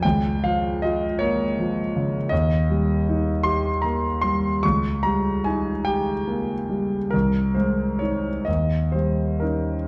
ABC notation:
X:1
M:6/8
L:1/8
Q:3/8=49
K:Ebmix
V:1 name="Grand piano"
g f e d3 | e3 c' b c' | d' b a g3 | B c d e c B |]
V:2 name="Grand piano" clef=bass
D,, F, F B, F, D, | E,, G, E G B, G, | D,, G, E G B, G, | C,, A, [CE] E,, G, [DE] |]